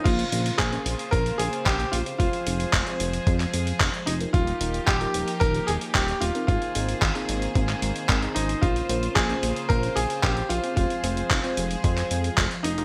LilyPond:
<<
  \new Staff \with { instrumentName = "Analog polysynth" } { \time 4/4 \key bes \dorian \tempo 4 = 112 <des' f' bes' c''>8 <des' f' bes' c''>8. <des' f' bes' c''>8. <des' f' bes' c''>4 <des' f' bes' c''>16 r8 <c' f' aes' c''>16~ | <c' f' aes' c''>8 <c' f' aes' c''>8. <c' f' aes' c''>8. <c' f' aes' c''>4 <c' f' aes' c''>16 r8 <ees' f' g' bes'>16~ | <ees' f' g' bes'>8 <ees' f' g' bes'>8. <ees' f' g' bes'>8. <ees' f' g' bes'>4 <ees' f' g' bes'>16 r8 <c' ees' aes' bes'>16~ | <c' ees' aes' bes'>8 <c' ees' aes' bes'>8. <c' ees' aes' bes'>8. <c' ees' aes' bes'>4 <c' ees' aes' bes'>16 <c' ees' aes' bes'>16 <des' f' bes' c''>8~ |
<des' f' bes' c''>8 <des' f' bes' c''>8. <des' f' bes' c''>8. <des' f' bes' c''>4 <des' f' bes' c''>16 r8 <c' f' aes' c''>16~ | <c' f' aes' c''>8 <c' f' aes' c''>8. <c' f' aes' c''>8. <c' f' aes' c''>4 <c' f' aes' c''>16 r8 <ees' f' g' bes'>16 | }
  \new Staff \with { instrumentName = "Grand piano" } { \time 4/4 \key bes \dorian f'4 aes'4 bes'8 aes'8 g'8 f'8 | f'2. r8 ees'8 | f'4 g'4 bes'8 aes'8 g'8 f'8 | f'2. r8 ees'8 |
f'4 aes'4 bes'8 aes'8 g'8 f'8 | f'2. r8 ees'8 | }
  \new Staff \with { instrumentName = "String section" } { \time 4/4 \key bes \dorian << { c''1~ | c''1 | ees'1 | c''1~ |
c''1~ | c''1 | } \\ { <des bes f'>1 | <f aes aes'>1 | <f bes g'>1 | <ees bes aes'>1 |
<des bes f'>1 | <f aes aes'>1 | } >> }
  \new Staff \with { instrumentName = "Analog synth bass" } { \clef bass \time 4/4 \key bes \dorian bes,,8 bes,,8 bes,,8 bes,,8 bes,,8 bes,,8 bes,,8 bes,,8 | f,,8 f,,8 f,,8 f,,8 f,8 f,8 f,,8 f,,8 | ees,,8 ees,,8 ees,,8 ees,,8 ees,,8 ees,,8 ees,,8 ees,,8 | aes,,8 aes,,8 aes,,8 aes,,8 aes,,8 aes,,8 aes,,8 aes,,8 |
bes,,8 bes,,8 bes,,8 bes,,8 bes,,8 bes,,8 bes,,8 bes,,8 | f,,8 f,,8 f,,8 f,,8 f,8 f,8 f,,8 f,,8 | }
  \new DrumStaff \with { instrumentName = "Drums" } \drummode { \time 4/4 <cymc hh bd>16 hh16 hh16 hh16 <hc hh bd>16 hh16 hh16 hh16 <hh bd>16 hh16 hh16 hh16 <hc hh bd>16 hh16 hh16 hh16 | <hh bd>16 hh16 hh16 hh16 <hc hh bd>16 hh16 hh16 hh16 <hh bd>16 <hc hh>16 hh16 hh16 <hc hh bd>16 hh16 hh16 hh16 | <hh bd>16 hh16 hh16 hh16 <hc hh bd>16 hh16 hh16 hh16 <hh bd>16 hh16 hh16 hh16 <hc hh bd>16 hh16 hh16 hh16 | <hh bd>16 hh16 hh16 hh16 <hc hh bd>16 hh16 hh16 hh16 <hh bd>16 <hc hh>16 hh16 hh16 <hc hh bd>16 hh16 hh16 hh16 |
<hh bd>16 hh16 hh16 hh16 <hc hh bd>16 hh16 hh16 hh16 <hh bd>16 hh16 hh16 hh16 <hc hh bd>16 hh16 hh16 hh16 | <hh bd>16 hh16 hh16 hh16 <hc hh bd>16 hh16 hh16 hh16 <hh bd>16 <hc hh>16 hh16 hh16 <hc hh bd>16 hh16 hh16 hh16 | }
>>